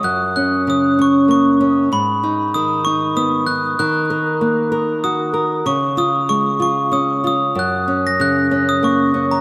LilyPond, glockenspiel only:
\new Staff \with { instrumentName = "Glockenspiel" } { \time 3/4 \key fis \major \tempo 4 = 95 fis'''8 fis'''8 dis'''8 cis'''8 cis'''4 | b''4 dis'''8 cis'''8 dis'''8 fis'''8 | fis'''2 dis'''4 | cis'''8 dis'''8 cis'''8 cis'''8 dis'''8 dis'''8 |
fis'''8. ais'''16 fis'''8. dis'''16 cis'''8. ais''16 | }